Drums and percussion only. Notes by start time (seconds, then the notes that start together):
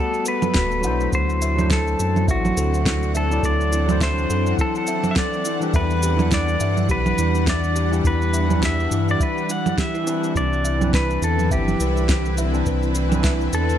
0.14 cabasa
0.26 cabasa
0.42 low conga, cabasa
0.54 kick, snare, cabasa
0.71 cabasa
0.83 cabasa
1.00 cabasa
1.13 kick, cabasa
1.30 cabasa
1.42 cabasa
1.59 low conga, cabasa
1.70 kick, snare, cabasa
1.88 cabasa
2.00 cabasa
2.16 low conga, cabasa
2.28 kick, cabasa
2.45 low conga, cabasa
2.57 cabasa
2.74 cabasa
2.86 kick, snare, cabasa
3.03 cabasa
3.15 cabasa
3.32 cabasa
3.43 kick, cabasa
3.61 cabasa
3.73 cabasa
3.89 low conga, cabasa
4.01 kick, snare, cabasa
4.18 cabasa
4.30 cabasa
4.47 cabasa
4.58 kick, cabasa
4.75 cabasa
4.87 cabasa
5.04 low conga, cabasa
5.16 kick, snare, cabasa
5.33 cabasa
5.45 cabasa
5.62 cabasa
5.74 kick, cabasa
5.90 cabasa
6.03 cabasa
6.19 low conga, cabasa
6.31 kick, snare, cabasa
6.48 cabasa
6.60 cabasa
6.77 low conga, cabasa
6.89 kick, cabasa
7.06 low conga, cabasa
7.18 cabasa
7.35 cabasa
7.47 kick, snare, cabasa
7.64 cabasa
7.76 cabasa
7.93 cabasa
8.05 kick, cabasa
8.22 cabasa
8.34 cabasa
8.50 low conga, cabasa
8.62 kick, snare, cabasa
8.80 cabasa
8.91 cabasa
9.08 cabasa
9.20 kick, cabasa
9.38 cabasa
9.49 cabasa
9.66 low conga, cabasa
9.78 kick, snare, cabasa
9.95 cabasa
10.07 cabasa
10.24 cabasa
10.36 kick, cabasa
10.53 cabasa
10.65 cabasa
10.81 low conga, cabasa
10.93 kick, snare, cabasa
11.10 cabasa
11.22 cabasa
11.39 low conga, cabasa
11.51 kick, cabasa
11.68 low conga, cabasa
11.80 cabasa
11.97 cabasa
12.09 kick, snare, cabasa
12.26 cabasa
12.38 cabasa
12.54 cabasa
12.66 kick, cabasa
12.83 cabasa
12.95 cabasa
13.12 low conga, cabasa
13.24 kick, snare, cabasa
13.41 cabasa
13.53 cabasa
13.70 cabasa